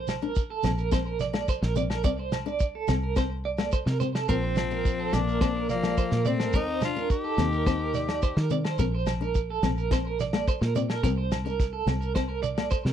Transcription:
Already playing: fingered electric bass A#1, clean electric guitar C5
0.08 snare, low agogo, shekere
0.22 steel-string acoustic guitar D4, clean electric guitar A#4, shekere
0.35 kick, shekere
0.50 clean electric guitar A4
0.63 fingered electric bass A#1, steel-string acoustic guitar C4, snare, low agogo, shekere
0.78 clean electric guitar A#4, shekere
0.92 steel-string acoustic guitar C4, clean electric guitar C5, kick, snare, low agogo, shekere
1.07 clean electric guitar A#4
1.20 clean electric guitar D5, snare, shekere
1.33 steel-string acoustic guitar A#3, snare, low agogo, shekere
1.48 clean electric guitar C5, kick, shekere
1.62 fingered electric bass A#1, clean electric guitar A#4, snare
1.76 steel-string acoustic guitar C4, clean electric guitar D5, shekere
1.90 clean electric guitar A#4, snare, low agogo
2.04 fingered electric bass C2, steel-string acoustic guitar C4, clean electric guitar D5, kick, shekere
2.19 clean electric guitar C5
2.32 snare, low agogo, shekere
2.46 steel-string acoustic guitar D4, clean electric guitar D5, shekere
2.60 kick, shekere
2.75 clean electric guitar A4
2.88 fingered electric bass C2, steel-string acoustic guitar C4, snare, low agogo, shekere
3.03 clean electric guitar A#4
3.16 steel-string acoustic guitar C4, clean electric guitar C5, kick, snare, low agogo, shekere
3.45 clean electric guitar D5
3.58 steel-string acoustic guitar A#3, snare, low agogo, shekere
3.72 clean electric guitar C5, kick, shekere
3.86 fingered electric bass C3, clean electric guitar A#4, snare
4.00 steel-string acoustic guitar C4, clean electric guitar C5, shekere
4.15 clean electric guitar A4, snare, low agogo, shekere
4.28 fingered electric bass A#1, trombone F3, tenor saxophone C4, steel-string acoustic guitar C4, clean electric guitar A#4, kick, shekere
4.43 clean electric guitar C5
4.56 trombone F3, tenor saxophone C4, snare, low agogo, shekere
4.71 clean electric guitar A#4, muted steel-string acoustic guitar stroke, shekere
4.85 kick, shekere
4.99 clean electric guitar A4
5.13 fingered electric bass A#1, trombone A#3, steel-string acoustic guitar C4, tenor saxophone D4, snare, low agogo, shekere
5.27 clean electric guitar A#4, shekere
5.41 steel-string acoustic guitar C4, clean electric guitar C5, kick, snare, low agogo, shekere
5.56 clean electric guitar A#4
5.69 trombone F3, tenor saxophone A#3, clean electric guitar D5, snare, shekere
5.83 steel-string acoustic guitar A#3, snare, low agogo, shekere
5.97 clean electric guitar C5, kick, shekere
6.11 fingered electric bass A#2, clean electric guitar A#4, snare
6.25 trombone A3, steel-string acoustic guitar C4, tenor saxophone C4, clean electric guitar D5, shekere
6.39 clean electric guitar A#4, snare, low agogo
6.53 fingered electric bass D#2, trombone C4, steel-string acoustic guitar C4, tenor saxophone D#4, clean electric guitar A#4, kick, shekere
6.68 clean electric guitar C5
6.81 trombone D4, tenor saxophone F4, snare, low agogo, shekere
6.96 steel-string acoustic guitar D4, clean electric guitar A#4, shekere
7.10 trombone D#4, tenor saxophone G4, kick, shekere
7.24 clean electric guitar A4
7.38 fingered electric bass D#2, steel-string acoustic guitar C4, snare, low agogo, shekere
7.52 clean electric guitar A#4, shekere
7.66 steel-string acoustic guitar C4, clean electric guitar C5, kick, snare, low agogo, shekere
7.80 clean electric guitar A#4
7.94 clean electric guitar D5, snare, shekere
8.09 snare, low agogo, shekere
8.22 clean electric guitar C5, kick, shekere
8.37 fingered electric bass D#3, clean electric guitar A#4, snare
8.50 steel-string acoustic guitar C4, clean electric guitar D5, shekere
8.65 clean electric guitar C5, snare, low agogo
8.78 fingered electric bass A#1, steel-string acoustic guitar C4, clean electric guitar A#4, kick, snare, shekere
8.95 clean electric guitar C5
9.07 snare, low agogo, shekere
9.21 steel-string acoustic guitar D4, clean electric guitar A#4, shekere
9.35 kick, shekere
9.50 clean electric guitar A4
9.63 fingered electric bass A#1, steel-string acoustic guitar C4, snare, low agogo, shekere
9.77 clean electric guitar A#4, shekere
9.91 steel-string acoustic guitar C4, clean electric guitar C5, kick, snare, low agogo, shekere
10.07 clean electric guitar A#4
10.19 clean electric guitar D5, snare, shekere
10.33 steel-string acoustic guitar A#3, snare, low agogo, shekere
10.48 clean electric guitar C5, kick, shekere
10.61 fingered electric bass A#2, clean electric guitar A#4, snare
10.75 steel-string acoustic guitar C4, clean electric guitar D5, shekere
10.90 clean electric guitar A#4, snare, low agogo
11.03 fingered electric bass C2, steel-string acoustic guitar C4, clean electric guitar A#4, kick, snare, shekere
11.18 clean electric guitar C5
11.32 snare, low agogo, shekere
11.45 steel-string acoustic guitar D4, clean electric guitar A#4, shekere
11.60 kick, snare, shekere
11.73 clean electric guitar A4
11.87 fingered electric bass C2, steel-string acoustic guitar C4, snare, low agogo, shekere
12.01 clean electric guitar A#4, shekere
12.15 steel-string acoustic guitar C4, clean electric guitar C5, kick, snare, low agogo, shekere
12.29 clean electric guitar A#4
12.43 clean electric guitar D5, shekere
12.57 steel-string acoustic guitar A#3, snare, low agogo, shekere
12.71 clean electric guitar C5, kick, shekere
12.85 fingered electric bass C3, clean electric guitar A#4, snare

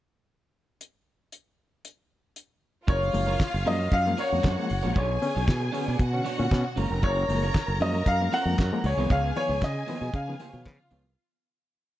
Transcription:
0.81 closed hi-hat
1.32 closed hi-hat
1.85 closed hi-hat
2.36 closed hi-hat
2.87 fingered electric bass F#1, clean electric guitar C#4 F4 A#4 C#5, violin section F4 F5, grand piano C#5, kick, closed hi-hat
3.01 reed electric piano G#3 A#3, muted clean electric guitar stroke
3.13 fingered electric bass F#1, reed electric piano F3 G#3 A#3, muted clean electric guitar stroke, open hi-hat
3.27 clean electric guitar C#4 F4 A#4 C#5
3.39 muted clean electric guitar stroke, kick, snare, clap, closed hi-hat
3.53 fingered electric bass F#1, muted clean electric guitar stroke
3.65 fingered electric bass F#2, reed electric piano F3 G#3 A#3, clean electric guitar C#4 F4 A#4 C#5, grand piano D#5, open hi-hat
3.79 clean electric guitar C#4 F4 A#4 C#5
3.92 fingered electric bass F#2, grand piano F5, muted clean electric guitar stroke, kick, closed hi-hat
4.05 reed electric piano F3 G#3 A#3, muted clean electric guitar stroke
4.17 clean electric guitar C#4 F4 A#4 C#5, violin section F#4 F#5, grand piano C#5, open hi-hat
4.31 fingered electric bass F2, reed electric piano F3 G#3 A#3, muted clean electric guitar stroke
4.43 fingered electric bass F#2, clean electric guitar C#4 F4 A#4 C#5, kick, snare, clap, closed hi-hat
4.57 reed electric piano F3 G#3 A#3, muted clean electric guitar stroke
4.69 fingered electric bass F#1, muted clean electric guitar stroke, open hi-hat
4.83 fingered electric bass A#1, reed electric piano F3 G#3 A#3, clean electric guitar C#4 F4 A#4 C#5
4.95 fingered electric bass B1, reed electric piano B2, clean electric guitar B3 D4 F#4 C#5, violin section G#4 G#5, grand piano C#5, kick, closed hi-hat
5.10 muted clean electric guitar stroke
5.22 reed electric piano D3 B3 C#4, muted clean electric guitar stroke, open hi-hat
5.35 fingered electric bass B1, clean electric guitar B3 D4 F#4 C#5
5.47 reed electric piano B2, fingered electric bass B2, muted clean electric guitar stroke, kick, snare, clap, closed hi-hat
5.60 muted clean electric guitar stroke
5.72 reed electric piano D3 B3 C#4, clean electric guitar B3 D4 F#4 C#5, open hi-hat
5.86 fingered electric bass B2, clean electric guitar B3 D4 F#4 D5, reed electric piano B3 C#4
5.99 fingered electric bass B2, violin section F#4 F#5, muted clean electric guitar stroke, kick, closed hi-hat
6.13 reed electric piano D3 B3 C#4, muted clean electric guitar stroke
6.24 reed electric piano B2, clean electric guitar B3 D4 F#4 C#5, open hi-hat
6.38 fingered electric bass A#2, reed electric piano D3 B3 C#4, muted clean electric guitar stroke
6.51 fingered electric bass B2, reed electric piano B3 C#4, kick, snare, clap, closed hi-hat
6.65 reed electric piano B2, muted clean electric guitar stroke
6.76 fingered electric bass F#1, reed electric piano G#3 A#3, clean electric guitar C#4 F4 A#4 C#5, violin section A#4 A#5, open hi-hat
6.90 fingered electric bass F1, muted clean electric guitar stroke
7.02 fingered electric bass F#1, clean electric guitar C#4 F4 A#4 C#5, grand piano C#5, kick, closed hi-hat
7.16 reed electric piano G#3 A#3, muted clean electric guitar stroke
7.29 fingered electric bass F#1, reed electric piano F3 G#3 A#3, muted clean electric guitar stroke, open hi-hat
7.42 clean electric guitar C#4 F4 A#4 C#5
7.54 muted clean electric guitar stroke, kick, snare, clap, closed hi-hat
7.68 fingered electric bass F#1, muted clean electric guitar stroke
7.80 fingered electric bass F#2, reed electric piano F3 G#3 A#3, clean electric guitar C#4 F4 A#4 C#5, grand piano D#5, open hi-hat
7.94 clean electric guitar C#4 F4 A#4 C#5
8.06 fingered electric bass F#2, grand piano F5, muted clean electric guitar stroke, kick, closed hi-hat
8.21 reed electric piano F3 G#3 A#3, muted clean electric guitar stroke
8.32 clean electric guitar C#4 F4 A#4 C#5, grand piano F#5, open hi-hat
8.46 fingered electric bass F2, reed electric piano F3 G#3 A#3, muted clean electric guitar stroke
8.58 fingered electric bass F#2, clean electric guitar C#4 F4 A#4 C#5, kick, snare, clap, closed hi-hat
8.72 reed electric piano F3 G#3 A#3, muted clean electric guitar stroke
8.83 fingered electric bass C#2, reed electric piano C#3, violin section G#4 G#5, grand piano C#5, muted clean electric guitar stroke, open hi-hat
8.97 fingered electric bass C2, reed electric piano D#3 F3 B3, clean electric guitar B3 F4 G#4 C#5
9.10 fingered electric bass C#2, reed electric piano C#3, clean electric guitar B3 F4 G#4 C#5, grand piano F5, kick, closed hi-hat
9.24 muted clean electric guitar stroke
9.36 reed electric piano D#3 F3 B3, grand piano C#5, muted clean electric guitar stroke, open hi-hat
9.49 fingered electric bass C#2, reed electric piano F3 B3, clean electric guitar B3 F4 G#4 C#5
9.61 fingered electric bass C#3, reed electric piano C#3, grand piano D#5, muted clean electric guitar stroke, kick, snare, clap, closed hi-hat
9.75 muted clean electric guitar stroke
9.87 reed electric piano D#3 F3 B3, clean electric guitar B3 F4 G#4 C#5, open hi-hat
10.01 fingered electric bass B2, reed electric piano F3 B3, clean electric guitar B3 F4 G#4 D#5
10.14 fingered electric bass C#3, grand piano F5, muted clean electric guitar stroke, kick, closed hi-hat
10.28 reed electric piano D#3 F3 B3, muted clean electric guitar stroke
10.40 reed electric piano C#3, clean electric guitar B3 F4 G#4 C#5, open hi-hat
10.52 fingered electric bass B2, reed electric piano D#3 F3 B3, clean electric guitar B3 F4 G#4 C#5
10.65 fingered electric bass C#3, reed electric piano F3 B3, violin section F4 F5, kick, snare, clap, closed hi-hat
10.79 reed electric piano C#3, muted clean electric guitar stroke
10.91 fingered electric bass C#2, reed electric piano F3 B3, clean electric guitar B3 F4 G#4 C#5, open hi-hat
11.04 fingered electric bass C2, muted clean electric guitar stroke

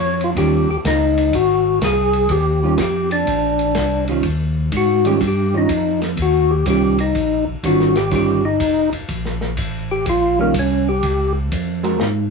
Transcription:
Already playing: tonewheel organ F2 C#5
0.21 tonewheel organ F4, ride
0.36 tonewheel organ D#2 G4, hollow-body jazz guitar D#3 G3 C#4 F4, kick, ride
0.69 tonewheel organ D#2 G4
0.84 tonewheel organ C#2 D#4, kick, snare, hi-hat pedal, ride
1.17 ride
1.33 tonewheel organ G#1 F#4, kick, ride
1.81 tonewheel organ C2 G#4, kick, snare, hi-hat pedal, ride
2.13 ride
2.29 tonewheel organ D#2 G4, kick, ride
2.63 hollow-body jazz guitar D#3 G3 C#4 F4
2.78 tonewheel organ F2 G4, kick, snare, hi-hat pedal, ride
3.11 tonewheel organ D4, ride
3.27 tonewheel organ A#1, kick, ride
3.59 ride
3.75 tonewheel organ C2, kick, snare, hi-hat pedal, ride
4.08 hollow-body jazz guitar D#3 G3 C#4 F4, ride
4.23 tonewheel organ D#2, kick, ride
4.72 tonewheel organ G#2, kick, hi-hat pedal, ride
4.77 tonewheel organ F#4
5.05 hollow-body jazz guitar D#3 G3 C#4 F4, tonewheel organ G4, ride
5.21 tonewheel organ G2, kick, ride
5.28 tonewheel organ G4
5.54 hollow-body jazz guitar D#3 G3 C#4 F4, tonewheel organ D#4
5.69 tonewheel organ F2, kick, hi-hat pedal, ride
6.02 snare, ride
6.17 tonewheel organ D#2, kick, ride
6.22 tonewheel organ F#4
6.51 tonewheel organ G4
6.66 tonewheel organ C2, hollow-body jazz guitar D#3 G3 C#4 F4, kick, hi-hat pedal, ride
6.70 tonewheel organ G4
6.98 tonewheel organ D#4, ride
7.15 tonewheel organ A#1, kick, ride
7.47 tonewheel organ A#1
7.63 tonewheel organ G#1 F#4, hollow-body jazz guitar D#3 G3 C#4 F4, kick, hi-hat pedal, ride
7.80 snare
7.95 tonewheel organ G4, snare, ride
8.11 tonewheel organ G1, hollow-body jazz guitar D#3 G3 C#4 F4, kick, ride
8.16 tonewheel organ G4
8.45 tonewheel organ D#4
8.60 tonewheel organ F1, kick, hi-hat pedal, ride
8.92 tonewheel organ F1, ride
9.08 tonewheel organ A#1, kick, ride
9.25 snare
9.41 snare
9.57 tonewheel organ A1, kick, hi-hat pedal, ride
9.91 tonewheel organ G4
10.06 tonewheel organ A#1 F4, kick, ride
10.39 hollow-body jazz guitar D#3 G3 C#4 F4, tonewheel organ A#3
10.54 tonewheel organ C2, kick, hi-hat pedal, ride
10.59 tonewheel organ C#4
10.89 tonewheel organ G4
11.03 tonewheel organ C#2, kick, ride
11.52 tonewheel organ F2, kick, hi-hat pedal, ride
11.83 hollow-body jazz guitar G#3 C4 F#4 A#4, ride
11.99 tonewheel organ G#2, snare

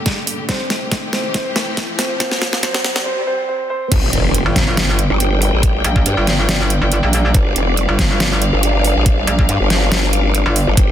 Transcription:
Already playing: string section G2 A#2 D3 G4, grand piano A3 A4, riser
0.06 kick, snare, closed hi-hat
0.27 open hi-hat
0.49 string section F2 C3 A3 G4, grand piano C4 C5, kick, snare, closed hi-hat
0.70 snare, closed hi-hat
0.92 kick, snare, closed hi-hat
1.13 grand piano C4 C5, snare, closed hi-hat
1.34 grand piano C4 C5, kick, snare, closed hi-hat
1.56 snare, closed hi-hat
1.77 kick, snare, closed hi-hat
1.99 grand piano C4 C5, snare, open hi-hat
2.20 grand piano C4 C5, kick, snare, closed hi-hat
2.32 snare
2.42 snare, closed hi-hat
2.53 snare
2.63 grand piano C4 C5, kick, snare, closed hi-hat
2.74 snare
2.85 snare, closed hi-hat
2.96 snare
3.06 grand piano C4 C5
3.27 grand piano C4 C5
3.49 grand piano C4 C5
3.70 grand piano C4 C5
3.92 wobble bass G1, string section G3 D4 D5 G5, kick, closed hi-hat, crash, impact
4.13 wobble bass F1, closed hi-hat
4.34 closed hi-hat
4.46 wobble bass G1
4.56 kick, snare, closed hi-hat
4.77 snare, closed hi-hat
4.99 closed hi-hat
5.10 wobble bass G1
5.20 closed hi-hat
5.42 open hi-hat
5.53 wobble bass A1
5.63 kick, closed hi-hat
5.84 wobble bass A#1, closed hi-hat
5.96 kick
6.06 wobble bass G2, closed hi-hat
6.17 wobble bass G1
6.27 snare, closed hi-hat
6.49 snare, closed hi-hat
6.70 closed hi-hat
6.81 wobble bass G1
6.92 closed hi-hat
7.03 wobble bass A#1
7.13 open hi-hat
7.34 wobble bass G1, kick, closed hi-hat
7.56 wobble bass F1, closed hi-hat
7.77 closed hi-hat
7.89 wobble bass G1
7.99 kick, snare, closed hi-hat
8.20 snare, closed hi-hat
8.42 closed hi-hat
8.53 wobble bass G1
8.63 closed hi-hat
8.85 open hi-hat
8.96 wobble bass A1
9.06 kick, closed hi-hat
9.27 wobble bass A#1, closed hi-hat
9.39 kick
9.49 wobble bass G2, closed hi-hat
9.60 wobble bass G1
9.70 snare, closed hi-hat
9.92 snare, closed hi-hat
10.13 closed hi-hat
10.35 closed hi-hat
10.46 wobble bass G1
10.56 open hi-hat
10.67 wobble bass G1
10.77 wobble bass G1, string section C5 G5, kick, closed hi-hat

